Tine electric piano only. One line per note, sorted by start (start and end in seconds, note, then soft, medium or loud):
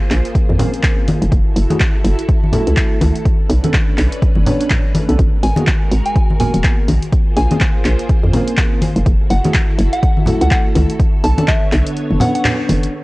0.59 1.06 A#3 medium
0.59 1.06 C4 medium
0.59 1.07 C#4 medium
0.59 1.07 A#4 medium
1.70 1.80 A3 medium
1.70 1.80 E4 medium
1.70 1.80 F#4 medium
1.70 1.80 G#4 loud
2.52 3.24 A3 medium
2.52 3.24 E4 medium
2.52 3.24 F#4 medium
2.52 3.25 A4 medium
3.63 3.73 B3 medium
3.63 3.73 C#4 medium
3.63 3.73 D4 medium
3.63 3.74 A4 loud
4.46 4.66 B3 medium
4.46 4.66 C#4 medium
4.46 4.66 D4 medium
4.46 4.66 C#5 medium
5.08 5.18 B3 medium
5.08 5.18 C#4 medium
5.08 5.18 D4 medium
5.08 5.18 A4 loud
5.57 5.67 A#3 medium
5.57 5.67 B3 medium
5.57 5.67 F#4 medium
5.57 5.67 G#4 loud
6.40 6.87 A#3 medium
6.40 6.87 B3 medium
6.40 6.87 F#4 medium
6.40 6.87 A#4 medium
7.50 7.60 A#3 medium
7.50 7.60 C4 medium
7.50 7.60 C#4 medium
7.50 7.61 G#4 loud
8.33 8.80 A#3 medium
8.33 8.81 C4 medium
8.33 8.81 C#4 medium
8.33 8.81 A#4 medium
9.44 9.54 A3 medium
9.44 9.54 E4 medium
9.44 9.54 F#4 medium
9.44 9.54 G#4 medium
10.26 10.98 A3 medium
10.26 10.98 E4 medium
10.26 10.99 F#4 medium
10.26 10.99 A4 medium
11.38 11.47 B3 medium
11.38 11.48 C#4 medium
11.38 11.48 D4 medium
11.38 11.48 A4 loud
12.20 12.92 B3 medium
12.20 12.92 C#4 medium
12.20 12.92 D4 medium
12.20 12.93 B4 medium